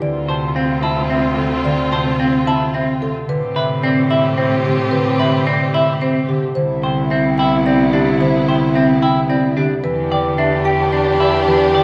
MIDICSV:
0, 0, Header, 1, 7, 480
1, 0, Start_track
1, 0, Key_signature, 0, "minor"
1, 0, Tempo, 545455
1, 17, Time_signature, 3, 2, 24, 8
1, 10417, End_track
2, 0, Start_track
2, 0, Title_t, "Marimba"
2, 0, Program_c, 0, 12
2, 16, Note_on_c, 0, 74, 76
2, 172, Note_off_c, 0, 74, 0
2, 260, Note_on_c, 0, 81, 59
2, 414, Note_off_c, 0, 81, 0
2, 490, Note_on_c, 0, 77, 56
2, 650, Note_off_c, 0, 77, 0
2, 731, Note_on_c, 0, 81, 76
2, 891, Note_off_c, 0, 81, 0
2, 970, Note_on_c, 0, 76, 64
2, 1130, Note_off_c, 0, 76, 0
2, 1210, Note_on_c, 0, 69, 62
2, 1370, Note_off_c, 0, 69, 0
2, 1451, Note_on_c, 0, 74, 74
2, 1610, Note_off_c, 0, 74, 0
2, 1691, Note_on_c, 0, 81, 59
2, 1851, Note_off_c, 0, 81, 0
2, 1933, Note_on_c, 0, 77, 55
2, 2091, Note_off_c, 0, 77, 0
2, 2178, Note_on_c, 0, 81, 84
2, 2333, Note_off_c, 0, 81, 0
2, 2413, Note_on_c, 0, 76, 60
2, 2571, Note_off_c, 0, 76, 0
2, 2659, Note_on_c, 0, 69, 72
2, 2813, Note_off_c, 0, 69, 0
2, 2896, Note_on_c, 0, 71, 87
2, 3052, Note_off_c, 0, 71, 0
2, 3132, Note_on_c, 0, 76, 64
2, 3291, Note_off_c, 0, 76, 0
2, 3375, Note_on_c, 0, 74, 63
2, 3532, Note_off_c, 0, 74, 0
2, 3612, Note_on_c, 0, 76, 78
2, 3771, Note_off_c, 0, 76, 0
2, 3852, Note_on_c, 0, 72, 67
2, 4011, Note_off_c, 0, 72, 0
2, 4100, Note_on_c, 0, 67, 72
2, 4254, Note_off_c, 0, 67, 0
2, 4323, Note_on_c, 0, 71, 89
2, 4488, Note_off_c, 0, 71, 0
2, 4570, Note_on_c, 0, 76, 67
2, 4730, Note_off_c, 0, 76, 0
2, 4810, Note_on_c, 0, 74, 60
2, 4970, Note_off_c, 0, 74, 0
2, 5056, Note_on_c, 0, 76, 87
2, 5212, Note_off_c, 0, 76, 0
2, 5292, Note_on_c, 0, 72, 73
2, 5451, Note_off_c, 0, 72, 0
2, 5533, Note_on_c, 0, 67, 69
2, 5691, Note_off_c, 0, 67, 0
2, 5766, Note_on_c, 0, 72, 90
2, 5929, Note_off_c, 0, 72, 0
2, 6013, Note_on_c, 0, 79, 66
2, 6171, Note_off_c, 0, 79, 0
2, 6252, Note_on_c, 0, 76, 66
2, 6411, Note_off_c, 0, 76, 0
2, 6492, Note_on_c, 0, 79, 82
2, 6651, Note_off_c, 0, 79, 0
2, 6740, Note_on_c, 0, 74, 71
2, 6894, Note_off_c, 0, 74, 0
2, 6979, Note_on_c, 0, 67, 76
2, 7133, Note_off_c, 0, 67, 0
2, 7222, Note_on_c, 0, 72, 88
2, 7374, Note_off_c, 0, 72, 0
2, 7467, Note_on_c, 0, 79, 67
2, 7616, Note_off_c, 0, 79, 0
2, 7706, Note_on_c, 0, 76, 61
2, 7856, Note_off_c, 0, 76, 0
2, 7942, Note_on_c, 0, 79, 87
2, 8094, Note_off_c, 0, 79, 0
2, 8182, Note_on_c, 0, 74, 75
2, 8335, Note_off_c, 0, 74, 0
2, 8424, Note_on_c, 0, 67, 68
2, 8575, Note_off_c, 0, 67, 0
2, 8657, Note_on_c, 0, 71, 90
2, 8813, Note_off_c, 0, 71, 0
2, 8902, Note_on_c, 0, 79, 73
2, 9054, Note_off_c, 0, 79, 0
2, 9138, Note_on_c, 0, 76, 72
2, 9293, Note_off_c, 0, 76, 0
2, 9373, Note_on_c, 0, 79, 88
2, 9531, Note_off_c, 0, 79, 0
2, 9613, Note_on_c, 0, 74, 66
2, 9771, Note_off_c, 0, 74, 0
2, 9859, Note_on_c, 0, 67, 68
2, 10013, Note_off_c, 0, 67, 0
2, 10102, Note_on_c, 0, 71, 87
2, 10254, Note_off_c, 0, 71, 0
2, 10330, Note_on_c, 0, 79, 65
2, 10417, Note_off_c, 0, 79, 0
2, 10417, End_track
3, 0, Start_track
3, 0, Title_t, "Clean electric guitar"
3, 0, Program_c, 1, 27
3, 251, Note_on_c, 1, 72, 55
3, 411, Note_off_c, 1, 72, 0
3, 491, Note_on_c, 1, 60, 77
3, 650, Note_off_c, 1, 60, 0
3, 727, Note_on_c, 1, 64, 61
3, 889, Note_off_c, 1, 64, 0
3, 970, Note_on_c, 1, 60, 60
3, 1130, Note_off_c, 1, 60, 0
3, 1695, Note_on_c, 1, 72, 63
3, 1852, Note_off_c, 1, 72, 0
3, 1932, Note_on_c, 1, 60, 81
3, 2091, Note_off_c, 1, 60, 0
3, 2176, Note_on_c, 1, 64, 61
3, 2332, Note_off_c, 1, 64, 0
3, 2414, Note_on_c, 1, 60, 65
3, 2572, Note_off_c, 1, 60, 0
3, 3134, Note_on_c, 1, 71, 67
3, 3292, Note_off_c, 1, 71, 0
3, 3374, Note_on_c, 1, 60, 88
3, 3532, Note_off_c, 1, 60, 0
3, 3613, Note_on_c, 1, 64, 60
3, 3771, Note_off_c, 1, 64, 0
3, 3850, Note_on_c, 1, 60, 66
3, 4010, Note_off_c, 1, 60, 0
3, 4573, Note_on_c, 1, 71, 67
3, 4731, Note_off_c, 1, 71, 0
3, 4812, Note_on_c, 1, 60, 87
3, 4971, Note_off_c, 1, 60, 0
3, 5052, Note_on_c, 1, 64, 65
3, 5211, Note_off_c, 1, 64, 0
3, 5294, Note_on_c, 1, 60, 66
3, 5452, Note_off_c, 1, 60, 0
3, 6015, Note_on_c, 1, 72, 64
3, 6172, Note_off_c, 1, 72, 0
3, 6258, Note_on_c, 1, 60, 89
3, 6413, Note_off_c, 1, 60, 0
3, 6505, Note_on_c, 1, 64, 73
3, 6655, Note_off_c, 1, 64, 0
3, 6744, Note_on_c, 1, 60, 73
3, 6895, Note_off_c, 1, 60, 0
3, 6982, Note_on_c, 1, 62, 83
3, 7134, Note_off_c, 1, 62, 0
3, 7467, Note_on_c, 1, 72, 62
3, 7616, Note_off_c, 1, 72, 0
3, 7703, Note_on_c, 1, 60, 88
3, 7855, Note_off_c, 1, 60, 0
3, 7941, Note_on_c, 1, 64, 63
3, 8094, Note_off_c, 1, 64, 0
3, 8179, Note_on_c, 1, 60, 70
3, 8334, Note_off_c, 1, 60, 0
3, 8419, Note_on_c, 1, 62, 78
3, 8573, Note_off_c, 1, 62, 0
3, 8902, Note_on_c, 1, 74, 68
3, 9054, Note_off_c, 1, 74, 0
3, 9137, Note_on_c, 1, 62, 86
3, 9293, Note_off_c, 1, 62, 0
3, 9375, Note_on_c, 1, 67, 68
3, 9532, Note_off_c, 1, 67, 0
3, 9616, Note_on_c, 1, 62, 66
3, 9772, Note_off_c, 1, 62, 0
3, 9857, Note_on_c, 1, 64, 79
3, 10013, Note_off_c, 1, 64, 0
3, 10337, Note_on_c, 1, 74, 66
3, 10417, Note_off_c, 1, 74, 0
3, 10417, End_track
4, 0, Start_track
4, 0, Title_t, "String section"
4, 0, Program_c, 2, 48
4, 22, Note_on_c, 2, 65, 68
4, 23, Note_on_c, 2, 60, 71
4, 2744, Note_off_c, 2, 65, 0
4, 2745, Note_off_c, 2, 60, 0
4, 2897, Note_on_c, 2, 67, 67
4, 2899, Note_on_c, 2, 60, 73
4, 5621, Note_off_c, 2, 67, 0
4, 5622, Note_off_c, 2, 60, 0
4, 5771, Note_on_c, 2, 64, 69
4, 5773, Note_on_c, 2, 59, 69
4, 8499, Note_off_c, 2, 59, 0
4, 8499, Note_off_c, 2, 64, 0
4, 8654, Note_on_c, 2, 62, 77
4, 8654, Note_on_c, 2, 67, 72
4, 10417, Note_off_c, 2, 62, 0
4, 10417, Note_off_c, 2, 67, 0
4, 10417, End_track
5, 0, Start_track
5, 0, Title_t, "French horn"
5, 0, Program_c, 3, 60
5, 14, Note_on_c, 3, 60, 71
5, 2740, Note_off_c, 3, 60, 0
5, 2896, Note_on_c, 3, 60, 72
5, 5621, Note_off_c, 3, 60, 0
5, 5772, Note_on_c, 3, 64, 81
5, 8499, Note_off_c, 3, 64, 0
5, 8655, Note_on_c, 3, 67, 82
5, 10417, Note_off_c, 3, 67, 0
5, 10417, End_track
6, 0, Start_track
6, 0, Title_t, "Harp"
6, 0, Program_c, 4, 46
6, 12, Note_on_c, 4, 50, 68
6, 252, Note_on_c, 4, 48, 56
6, 1202, Note_off_c, 4, 50, 0
6, 1212, Note_on_c, 4, 50, 63
6, 1445, Note_off_c, 4, 50, 0
6, 1455, Note_on_c, 4, 50, 79
6, 1687, Note_off_c, 4, 48, 0
6, 1698, Note_on_c, 4, 48, 56
6, 2645, Note_off_c, 4, 50, 0
6, 2655, Note_on_c, 4, 50, 62
6, 2883, Note_off_c, 4, 50, 0
6, 2894, Note_on_c, 4, 50, 84
6, 2916, Note_off_c, 4, 48, 0
6, 3135, Note_on_c, 4, 48, 63
6, 4083, Note_off_c, 4, 50, 0
6, 4093, Note_on_c, 4, 50, 68
6, 4324, Note_off_c, 4, 50, 0
6, 4334, Note_on_c, 4, 50, 83
6, 4567, Note_off_c, 4, 48, 0
6, 4578, Note_on_c, 4, 48, 67
6, 5528, Note_off_c, 4, 50, 0
6, 5539, Note_on_c, 4, 50, 64
6, 5763, Note_off_c, 4, 50, 0
6, 5774, Note_on_c, 4, 50, 80
6, 5796, Note_off_c, 4, 48, 0
6, 6018, Note_on_c, 4, 48, 67
6, 6966, Note_off_c, 4, 50, 0
6, 6976, Note_on_c, 4, 50, 73
6, 7207, Note_off_c, 4, 50, 0
6, 7217, Note_on_c, 4, 50, 88
6, 7448, Note_off_c, 4, 48, 0
6, 7458, Note_on_c, 4, 48, 67
6, 8405, Note_off_c, 4, 50, 0
6, 8415, Note_on_c, 4, 50, 67
6, 8658, Note_on_c, 4, 52, 78
6, 8675, Note_off_c, 4, 50, 0
6, 8676, Note_off_c, 4, 48, 0
6, 8897, Note_on_c, 4, 50, 68
6, 9138, Note_on_c, 4, 59, 66
6, 9841, Note_off_c, 4, 52, 0
6, 9852, Note_on_c, 4, 52, 68
6, 10081, Note_off_c, 4, 52, 0
6, 10091, Note_on_c, 4, 52, 85
6, 10323, Note_off_c, 4, 50, 0
6, 10333, Note_on_c, 4, 50, 69
6, 10417, Note_off_c, 4, 50, 0
6, 10417, Note_off_c, 4, 52, 0
6, 10417, Note_off_c, 4, 59, 0
6, 10417, End_track
7, 0, Start_track
7, 0, Title_t, "Cello"
7, 0, Program_c, 5, 42
7, 14, Note_on_c, 5, 38, 66
7, 2764, Note_off_c, 5, 38, 0
7, 2897, Note_on_c, 5, 45, 72
7, 5646, Note_off_c, 5, 45, 0
7, 5774, Note_on_c, 5, 36, 74
7, 8524, Note_off_c, 5, 36, 0
7, 8658, Note_on_c, 5, 40, 75
7, 10417, Note_off_c, 5, 40, 0
7, 10417, End_track
0, 0, End_of_file